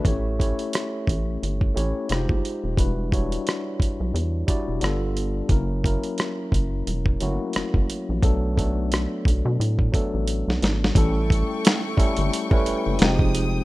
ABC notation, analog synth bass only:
X:1
M:4/4
L:1/16
Q:"Swing 16ths" 1/4=88
K:Amix
V:1 name="Analog synth bass" clef=bass
A,,,3 z3 A,,,2 G,,,2 A,,, z =F,,, G,,, z _E,,, | E,,,4 z2 B,,, B,,, E,,2 z E,,, G,,,4 | F,,,3 z3 F,,,2 E,,,2 G,,, z F,,, F,,, z ^A,,, | B,,,4- B,,, z B,,, B,, A,,2 z A,,,2 B,,, ^G,,,2 |
A,,,3 z3 G,,, G,,, z2 F,,, F,,, =F,,,4 |]